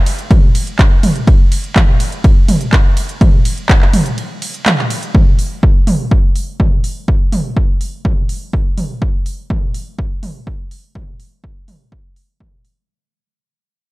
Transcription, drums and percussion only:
0.06 open hi-hat, ride
0.19 closed hi-hat
0.31 kick, closed hi-hat, mid tom, ride
0.55 open hi-hat, ride
0.67 closed hi-hat
0.79 kick, clap, closed hi-hat, ride
1.03 mid tom, open hi-hat, ride
1.16 closed hi-hat
1.27 kick, closed hi-hat, ride
1.52 open hi-hat, ride
1.64 closed hi-hat
1.76 kick, clap, closed hi-hat, mid tom, ride
2.00 open hi-hat, ride
2.12 closed hi-hat
2.24 kick, closed hi-hat, ride
2.48 mid tom, open hi-hat, ride
2.61 closed hi-hat
2.73 kick, clap, closed hi-hat, ride
2.97 open hi-hat, ride
3.09 closed hi-hat
3.21 kick, closed hi-hat, mid tom, ride
3.45 open hi-hat, ride
3.58 closed hi-hat
3.69 kick, clap, closed hi-hat, ride
3.82 clap
3.93 mid tom, open hi-hat, ride
4.06 closed hi-hat
4.18 closed hi-hat, ride
4.42 open hi-hat, ride
4.54 closed hi-hat
4.66 clap, closed hi-hat, mid tom, ride
4.78 clap
4.90 open hi-hat, ride
5.03 closed hi-hat
5.14 kick, mid tom
5.39 open hi-hat
5.63 kick
5.87 mid tom, open hi-hat
6.11 kick
6.36 open hi-hat
6.60 kick, mid tom
6.84 open hi-hat
7.08 kick
7.32 mid tom, open hi-hat
7.57 kick
7.81 open hi-hat
8.05 kick, mid tom
8.29 open hi-hat
8.53 kick
8.78 mid tom, open hi-hat
9.02 kick
9.26 open hi-hat
9.50 kick, mid tom
9.74 open hi-hat
9.99 kick
10.23 mid tom, open hi-hat
10.47 kick
10.71 open hi-hat
10.95 kick, mid tom
11.20 open hi-hat
11.44 kick
11.68 mid tom, open hi-hat
11.92 kick
12.16 open hi-hat
12.40 kick, mid tom
12.65 open hi-hat

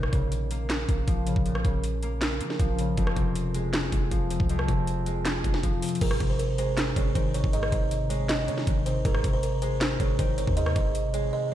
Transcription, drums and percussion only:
0.03 cross-stick
0.13 kick, closed hi-hat
0.32 closed hi-hat
0.51 closed hi-hat
0.70 snare, clap, closed hi-hat
0.89 kick, closed hi-hat
1.08 kick, closed hi-hat
1.27 closed hi-hat
1.36 kick
1.46 closed hi-hat
1.55 cross-stick
1.65 kick, closed hi-hat
1.84 closed hi-hat
2.03 closed hi-hat
2.21 snare, clap, closed hi-hat
2.41 closed hi-hat
2.50 snare
2.60 kick, closed hi-hat
2.79 closed hi-hat
2.97 kick, closed hi-hat
3.07 cross-stick
3.16 kick, closed hi-hat
3.35 closed hi-hat
3.54 closed hi-hat
3.73 snare, clap, closed hi-hat
3.92 kick, closed hi-hat
4.11 kick, closed hi-hat
4.31 closed hi-hat
4.40 kick
4.49 closed hi-hat
4.59 cross-stick
4.68 kick, closed hi-hat
4.87 closed hi-hat
5.06 closed hi-hat
5.25 snare, clap, closed hi-hat
5.44 kick, closed hi-hat
5.54 snare
5.63 kick, closed hi-hat
5.82 closed hi-hat, open hi-hat
5.89 closed hi-hat
5.95 closed hi-hat
6.01 kick, closed hi-hat, crash
6.11 cross-stick
6.20 kick, closed hi-hat
6.39 closed hi-hat
6.58 closed hi-hat
6.77 snare, clap, closed hi-hat
6.96 kick, closed hi-hat
7.15 kick, closed hi-hat
7.34 closed hi-hat
7.44 kick
7.53 closed hi-hat
7.63 cross-stick
7.72 kick, closed hi-hat
7.91 closed hi-hat
8.10 closed hi-hat
8.29 snare, clap, closed hi-hat
8.48 closed hi-hat
8.58 snare
8.67 kick, closed hi-hat
8.86 closed hi-hat
9.05 kick, closed hi-hat
9.14 cross-stick
9.24 kick, closed hi-hat
9.43 closed hi-hat
9.62 closed hi-hat
9.81 snare, clap, closed hi-hat
10.00 kick, closed hi-hat
10.19 kick, closed hi-hat
10.38 closed hi-hat
10.47 kick
10.57 closed hi-hat
10.66 cross-stick
10.76 kick, closed hi-hat
10.95 closed hi-hat
11.14 closed hi-hat

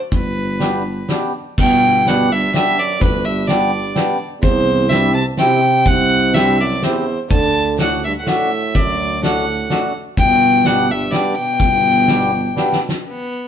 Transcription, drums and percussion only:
0.12 kick, closed hi-hat
0.60 snare, closed hi-hat
1.09 snare, closed hi-hat
1.58 kick, crash
2.07 snare, closed hi-hat
2.54 snare, closed hi-hat
3.01 kick, closed hi-hat
3.48 snare, closed hi-hat
3.96 snare, closed hi-hat
4.43 kick, closed hi-hat
4.90 snare, closed hi-hat
5.37 snare, closed hi-hat
5.85 kick, closed hi-hat
6.34 snare, closed hi-hat
6.82 snare, closed hi-hat
7.30 kick, closed hi-hat
7.79 snare, closed hi-hat
8.27 snare, closed hi-hat
8.75 kick, closed hi-hat
9.23 snare, closed hi-hat
9.70 snare, closed hi-hat
10.17 kick, closed hi-hat
10.65 snare, closed hi-hat
11.12 snare, closed hi-hat
11.60 kick, closed hi-hat
12.08 snare, closed hi-hat
12.57 snare
12.72 snare
12.89 snare

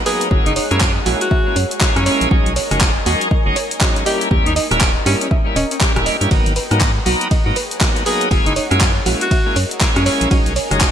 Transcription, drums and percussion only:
0.06 open hi-hat
0.21 closed hi-hat
0.31 kick
0.46 closed hi-hat
0.56 open hi-hat
0.71 cross-stick, closed hi-hat
0.81 kick, clap
1.06 open hi-hat
1.21 closed hi-hat
1.31 kick
1.56 open hi-hat
1.71 closed hi-hat
1.81 kick, clap
1.96 cross-stick, closed hi-hat
2.06 open hi-hat
2.21 closed hi-hat
2.31 kick
2.46 closed hi-hat
2.56 open hi-hat
2.71 cross-stick, closed hi-hat
2.81 kick, clap
3.06 open hi-hat
3.21 closed hi-hat
3.31 kick
3.56 open hi-hat
3.71 closed hi-hat
3.81 kick, cross-stick, clap
3.96 closed hi-hat
4.06 open hi-hat
4.21 closed hi-hat
4.31 kick
4.46 closed hi-hat
4.56 open hi-hat
4.71 cross-stick, closed hi-hat
4.81 kick, clap
5.06 open hi-hat
5.21 closed hi-hat
5.31 kick
5.56 open hi-hat
5.71 closed hi-hat
5.81 kick, clap
5.96 cross-stick, closed hi-hat
6.06 open hi-hat
6.21 closed hi-hat
6.31 kick, ride
6.46 closed hi-hat
6.56 open hi-hat
6.71 cross-stick, closed hi-hat
6.81 kick, clap, ride
7.06 open hi-hat
7.21 closed hi-hat
7.31 kick, ride
7.56 open hi-hat
7.71 closed hi-hat
7.81 kick, cross-stick, clap, ride
7.96 closed hi-hat
8.06 open hi-hat
8.21 closed hi-hat
8.31 kick, ride
8.46 closed hi-hat
8.56 open hi-hat
8.71 cross-stick, closed hi-hat
8.81 kick, clap, ride
9.06 open hi-hat
9.21 closed hi-hat
9.31 kick, ride
9.56 open hi-hat
9.71 closed hi-hat
9.81 kick, clap, ride
9.96 cross-stick, closed hi-hat
10.06 open hi-hat
10.21 closed hi-hat
10.31 kick, ride
10.46 closed hi-hat
10.56 open hi-hat
10.71 cross-stick, closed hi-hat
10.81 kick, clap, ride

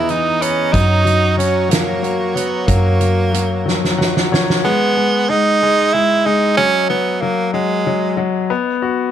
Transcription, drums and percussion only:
0.09 closed hi-hat
0.42 closed hi-hat
0.74 kick, closed hi-hat
1.07 closed hi-hat
1.40 closed hi-hat
1.71 snare, closed hi-hat
2.04 closed hi-hat
2.37 closed hi-hat
2.68 kick, closed hi-hat
3.01 closed hi-hat
3.34 closed hi-hat
3.68 snare
3.85 snare
4.01 snare
4.17 snare
4.34 snare
4.50 snare

